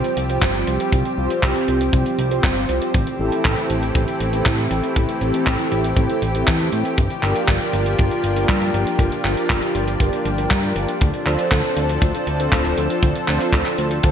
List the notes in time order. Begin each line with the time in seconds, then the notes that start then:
Already playing: F3 G3 C4 F4 G4 C5
0.04 closed hi-hat
0.17 C2, closed hi-hat
0.30 C4 F4 G4 C5, closed hi-hat
0.42 G1, kick, clap, closed hi-hat
0.55 closed hi-hat
0.67 C2, closed hi-hat
0.80 C4 F4 G4 C5, closed hi-hat
0.93 C2, kick, closed hi-hat
1.05 closed hi-hat
1.18 C2 C4 F4 G4 C5
1.30 closed hi-hat
1.43 C2, kick, clap, closed hi-hat
1.55 C4 F4 G4 C5, closed hi-hat
1.68 C2, closed hi-hat
1.81 closed hi-hat
1.93 C2 C4 F4 G4 C5, kick, closed hi-hat
2.06 closed hi-hat
2.18 C2, closed hi-hat
2.31 C4 F4 G4 C5, closed hi-hat
2.44 G1, kick, clap, closed hi-hat
2.56 closed hi-hat
2.69 C2, closed hi-hat
2.82 C4 F4 G4 C5, closed hi-hat
2.94 A1 E3 A3 G4, kick, closed hi-hat
3.07 closed hi-hat
3.19 A1 C4 E4 G4 A4
3.32 closed hi-hat
3.45 A1, kick, clap, closed hi-hat
3.57 C4 E4 G4 A4, closed hi-hat
3.70 A1, closed hi-hat
3.83 closed hi-hat
3.95 A1 C4 E4 G4 A4, kick, closed hi-hat
4.08 closed hi-hat
4.20 A1, closed hi-hat
4.33 C4 E4 G4 A4, closed hi-hat
4.46 A2, kick, clap, closed hi-hat
4.58 closed hi-hat
4.71 A1, closed hi-hat
4.83 C4 E4 G4 A4, closed hi-hat
4.96 A1, kick, closed hi-hat
5.09 closed hi-hat
5.21 A1 C4 E4 G4 A4, closed hi-hat
5.34 closed hi-hat
5.47 A1, kick, clap, closed hi-hat
5.59 C4 E4 G4 A4, closed hi-hat
5.72 A1, closed hi-hat
5.84 closed hi-hat
5.97 A1 C4 E4 G4 A4, kick, closed hi-hat
6.10 closed hi-hat
6.22 A1, closed hi-hat
6.35 C4 E4 G4 A4, closed hi-hat
6.47 E2, kick, clap, closed hi-hat
6.60 closed hi-hat
6.73 A2, closed hi-hat
6.85 C4 E4 G4 A4, closed hi-hat
6.98 G1 F3 A#3 D4, kick, closed hi-hat
7.10 closed hi-hat
7.23 G1 D4 F4 G4 A#4, clap
7.36 closed hi-hat
7.48 G1, kick, clap, closed hi-hat
7.61 D4 F4 G4 A#4, closed hi-hat
7.73 G1, closed hi-hat
7.86 closed hi-hat
7.99 G1 D4 F4 G4 A#4, kick, closed hi-hat
8.11 closed hi-hat
8.24 G1, closed hi-hat
8.36 D4 F4 G4 A#4, closed hi-hat
8.49 G2, kick, clap, closed hi-hat
8.62 closed hi-hat
8.74 G1, closed hi-hat
8.87 D4 F4 G4 A#4, closed hi-hat
8.99 G1, kick, closed hi-hat
9.12 closed hi-hat
9.24 G1 D4 F4 G4 A#4, clap
9.37 closed hi-hat
9.50 G1, kick, clap, closed hi-hat
9.62 D4 F4 G4 A#4, closed hi-hat
9.75 G1, closed hi-hat
9.88 closed hi-hat
10.00 G1 D4 F4 G4 A#4, kick, closed hi-hat
10.13 closed hi-hat
10.25 G1, closed hi-hat
10.38 D4 F4 G4 A#4, closed hi-hat
10.51 G2, kick, clap, closed hi-hat
10.63 closed hi-hat
10.76 G1, closed hi-hat
10.88 D4 F4 G4 A#4, closed hi-hat
11.01 D2 F3 C4 A4, kick, closed hi-hat
11.14 closed hi-hat
11.26 D2 D4 F4 A4 C5, clap
11.39 closed hi-hat
11.51 D2, kick, clap, closed hi-hat
11.64 D4 F4 A4 C5, closed hi-hat
11.77 D2, closed hi-hat
11.89 closed hi-hat
12.02 D2 D4 F4 A4 C5, kick, closed hi-hat
12.15 closed hi-hat
12.27 D2, closed hi-hat
12.40 D4 F4 A4 C5, closed hi-hat
12.52 D1, kick, clap, closed hi-hat
12.65 closed hi-hat
12.78 D2, closed hi-hat
12.90 D4 F4 A4 C5, closed hi-hat
13.03 D2, kick, closed hi-hat
13.15 closed hi-hat
13.28 D2 D4 F4 A4 C5, clap
13.41 closed hi-hat
13.53 D2, kick, clap, closed hi-hat
13.66 D4 F4 A4 C5, clap, closed hi-hat
13.78 D2, closed hi-hat
13.91 closed hi-hat
14.03 D2 D4 F4 A4 C5, kick, closed hi-hat